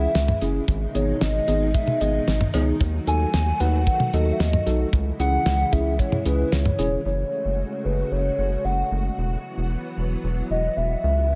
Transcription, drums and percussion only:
0.15 snare, closed hi-hat
0.28 mid tom
0.41 closed hi-hat
0.68 kick, closed hi-hat
0.95 closed hi-hat
1.21 snare, closed hi-hat
1.48 closed hi-hat
1.74 kick, closed hi-hat
1.87 mid tom
2.01 closed hi-hat
2.28 snare, closed hi-hat
2.41 mid tom
2.54 closed hi-hat, cowbell
2.81 kick, closed hi-hat
3.07 closed hi-hat
3.34 snare, closed hi-hat
3.60 closed hi-hat
3.87 kick, closed hi-hat
4.00 mid tom
4.13 closed hi-hat
4.40 snare, closed hi-hat
4.53 mid tom
4.67 closed hi-hat
4.93 kick, closed hi-hat
5.20 closed hi-hat
5.46 snare, closed hi-hat
5.73 kick, closed hi-hat
5.99 kick, closed hi-hat
6.12 mid tom
6.26 closed hi-hat
6.52 snare, closed hi-hat
6.66 mid tom
6.79 closed hi-hat

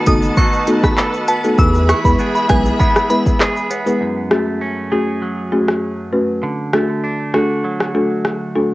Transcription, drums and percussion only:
0.07 kick, closed hi-hat, shaker
0.23 shaker
0.37 kick, shaker
0.53 shaker
0.67 closed hi-hat, shaker
0.84 kick, cross-stick, shaker
0.98 clap, shaker
1.14 shaker
1.28 closed hi-hat, shaker
1.44 shaker
1.58 kick, shaker
1.75 shaker
1.89 cross-stick, closed hi-hat, shaker
2.05 kick, shaker
2.19 shaker
2.35 shaker
2.49 kick, cross-stick, closed hi-hat, shaker
2.65 shaker
2.80 kick, shaker
2.96 cross-stick, shaker
3.10 closed hi-hat, shaker
3.26 kick, shaker
3.40 cross-stick, clap, shaker
3.56 shaker
3.70 closed hi-hat, shaker
3.86 shaker
4.31 cross-stick
5.68 cross-stick
6.74 cross-stick
7.34 cross-stick
7.80 cross-stick
8.25 cross-stick

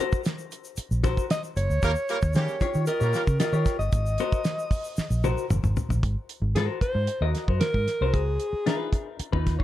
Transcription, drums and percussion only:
0.12 kick, shaker
0.24 snare, closed hi-hat, shaker
0.39 shaker
0.52 closed hi-hat, shaker
0.65 shaker
0.77 closed hi-hat, shaker
0.91 shaker
1.04 kick, snare, closed hi-hat, shaker
1.17 kick, shaker
1.30 snare, closed hi-hat, shaker
1.44 shaker
1.57 closed hi-hat, shaker
1.70 shaker
1.82 kick, closed hi-hat, shaker
1.95 shaker
2.09 closed hi-hat, shaker
2.22 kick, shaker
2.34 snare, closed hi-hat, shaker
2.48 shaker
2.61 kick, closed hi-hat, shaker
2.74 shaker
2.86 closed hi-hat, shaker
3.01 shaker
3.14 snare, closed hi-hat, shaker
3.27 kick, shaker
3.40 snare, closed hi-hat, shaker
3.53 shaker
3.66 kick, snare, closed hi-hat, shaker
3.80 shaker
3.92 kick, closed hi-hat, shaker
4.06 shaker
4.18 closed hi-hat, shaker
4.32 kick, shaker
4.44 snare, closed hi-hat, shaker
4.59 shaker
4.71 kick, open hi-hat, shaker
4.84 shaker
4.97 snare, shaker
5.11 shaker
5.24 high tom, shaker
5.38 shaker
5.50 mid tom, shaker
5.64 mid tom, shaker
5.77 floor tom, shaker
5.90 floor tom, shaker
6.03 kick, closed hi-hat
6.29 closed hi-hat
6.56 snare, closed hi-hat
6.81 kick, closed hi-hat
7.07 closed hi-hat
7.35 snare, closed hi-hat
7.48 kick
7.61 snare, closed hi-hat
7.74 kick
7.87 snare, closed hi-hat
8.14 kick, closed hi-hat
8.40 closed hi-hat
8.67 snare, closed hi-hat
8.93 kick, closed hi-hat
9.19 closed hi-hat
9.33 kick
9.47 kick, snare, closed hi-hat
9.60 kick

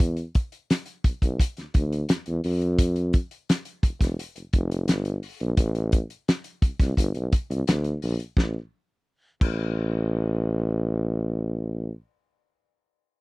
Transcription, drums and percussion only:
0.00 kick, closed hi-hat
0.17 closed hi-hat
0.35 kick, closed hi-hat
0.52 closed hi-hat
0.70 snare, closed hi-hat
0.86 closed hi-hat
1.04 kick, closed hi-hat
1.22 kick, closed hi-hat
1.40 kick, closed hi-hat
1.57 snare, closed hi-hat
1.74 kick, closed hi-hat
1.93 closed hi-hat
2.09 snare, closed hi-hat
2.26 closed hi-hat
2.44 open hi-hat
2.62 closed hi-hat
2.79 kick, closed hi-hat
2.96 closed hi-hat
3.13 kick, closed hi-hat
3.31 closed hi-hat
3.49 snare, closed hi-hat
3.65 closed hi-hat
3.83 kick, closed hi-hat
4.01 kick, snare, closed hi-hat
4.19 closed hi-hat
4.36 closed hi-hat
4.53 kick, closed hi-hat
4.71 closed hi-hat
4.88 snare, closed hi-hat
5.05 closed hi-hat
5.23 open hi-hat
5.40 closed hi-hat
5.57 kick, closed hi-hat
5.75 closed hi-hat
5.92 kick, closed hi-hat
6.10 closed hi-hat
6.28 snare, closed hi-hat
6.44 closed hi-hat
6.62 kick, closed hi-hat
6.80 kick, snare, closed hi-hat
6.97 kick, closed hi-hat
7.15 closed hi-hat
7.32 kick, closed hi-hat
7.51 closed hi-hat
7.67 snare, closed hi-hat
7.84 closed hi-hat
8.02 open hi-hat
8.20 closed hi-hat
8.37 kick, snare
9.41 kick, crash

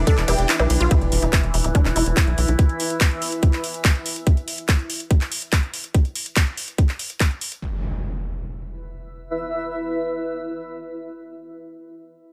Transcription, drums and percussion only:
0.07 kick, closed hi-hat, ride
0.18 clap, closed hi-hat
0.28 open hi-hat, ride, percussion blips
0.39 closed hi-hat
0.49 clap, closed hi-hat, ride
0.59 closed hi-hat, percussion blips
0.70 open hi-hat, ride
0.80 closed hi-hat
0.91 kick, closed hi-hat
1.01 closed hi-hat
1.12 open hi-hat
1.22 closed hi-hat
1.33 kick, clap, closed hi-hat
1.43 closed hi-hat
1.54 open hi-hat
1.64 closed hi-hat
1.75 kick, closed hi-hat
1.85 clap, closed hi-hat
1.96 open hi-hat
2.06 closed hi-hat
2.17 kick, clap, closed hi-hat
2.27 closed hi-hat
2.38 open hi-hat
2.48 closed hi-hat
2.59 kick, closed hi-hat
2.69 closed hi-hat
2.80 open hi-hat
2.90 closed hi-hat
3.01 kick, clap, closed hi-hat
3.11 closed hi-hat
3.22 open hi-hat
3.32 closed hi-hat
3.43 kick, closed hi-hat
3.53 clap, closed hi-hat
3.64 open hi-hat
3.74 closed hi-hat
3.85 kick, clap, closed hi-hat
3.95 closed hi-hat
4.06 open hi-hat
4.16 closed hi-hat
4.27 kick, closed hi-hat
4.37 closed hi-hat
4.48 open hi-hat
4.58 closed hi-hat
4.69 kick, clap, closed hi-hat
4.79 closed hi-hat
4.90 open hi-hat
5.00 closed hi-hat
5.11 kick, closed hi-hat
5.21 clap, closed hi-hat
5.32 open hi-hat
5.42 closed hi-hat
5.53 kick, clap, closed hi-hat
5.63 closed hi-hat
5.74 open hi-hat
5.84 closed hi-hat
5.94 kick, closed hi-hat
6.05 closed hi-hat
6.15 open hi-hat
6.26 closed hi-hat
6.36 kick, clap, closed hi-hat
6.47 closed hi-hat
6.57 open hi-hat
6.68 closed hi-hat
6.78 kick, closed hi-hat
6.89 clap, closed hi-hat
6.99 open hi-hat
7.10 closed hi-hat
7.20 kick, clap, closed hi-hat
7.31 closed hi-hat
7.41 open hi-hat
7.52 closed hi-hat

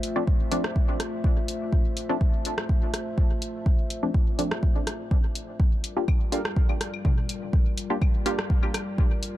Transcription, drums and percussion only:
0.03 open hi-hat
0.27 kick
0.52 open hi-hat
0.64 cross-stick
0.76 kick
1.00 cross-stick, open hi-hat
1.24 kick
1.48 open hi-hat
1.73 kick
1.97 open hi-hat
2.21 kick
2.45 open hi-hat
2.58 cross-stick
2.69 kick
2.94 cross-stick, open hi-hat
3.18 kick
3.42 open hi-hat
3.66 kick
3.90 open hi-hat
4.14 kick
4.39 open hi-hat
4.51 cross-stick
4.63 kick
4.87 cross-stick, open hi-hat
5.11 kick
5.35 open hi-hat
5.60 kick
5.84 open hi-hat
6.08 kick, claves
6.32 open hi-hat
6.45 cross-stick
6.56 kick
6.69 claves
6.81 cross-stick, open hi-hat
6.94 claves
7.05 kick, mid tom
7.29 open hi-hat
7.53 kick
7.78 open hi-hat
8.02 kick, claves
8.26 open hi-hat
8.39 cross-stick
8.50 kick
8.63 claves
8.74 cross-stick, open hi-hat, claves
8.98 kick
9.23 open hi-hat

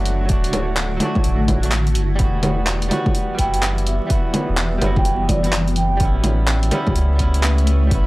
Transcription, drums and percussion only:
0.05 open hi-hat
0.29 kick, closed hi-hat
0.44 open hi-hat
0.53 open hi-hat, low bongo
0.77 clap, closed hi-hat
1.00 open hi-hat, low bongo
1.15 kick, low bongo
1.24 closed hi-hat
1.48 kick, open hi-hat, low bongo
1.63 closed hi-hat
1.72 clap, closed hi-hat
1.87 closed hi-hat
1.95 open hi-hat
2.19 kick, closed hi-hat
2.43 open hi-hat, low bongo
2.67 clap, closed hi-hat
2.82 open hi-hat
2.91 open hi-hat, low bongo
3.06 kick, low bongo
3.15 closed hi-hat
3.38 kick, open hi-hat
3.54 closed hi-hat
3.63 clap, closed hi-hat
3.78 closed hi-hat
3.87 open hi-hat
4.10 kick, closed hi-hat
4.34 open hi-hat, low bongo
4.57 clap, closed hi-hat
4.82 open hi-hat, low bongo
4.96 kick, low bongo
5.05 closed hi-hat
5.29 kick, open hi-hat, low bongo
5.44 closed hi-hat
5.53 clap, closed hi-hat
5.68 closed hi-hat
5.76 open hi-hat
6.00 kick, closed hi-hat
6.24 open hi-hat, low bongo
6.48 clap, closed hi-hat
6.63 open hi-hat
6.71 open hi-hat, low bongo
6.87 kick, low bongo
6.96 closed hi-hat
7.19 kick, open hi-hat
7.34 closed hi-hat
7.43 clap, closed hi-hat
7.58 closed hi-hat
7.67 open hi-hat
7.91 kick, closed hi-hat

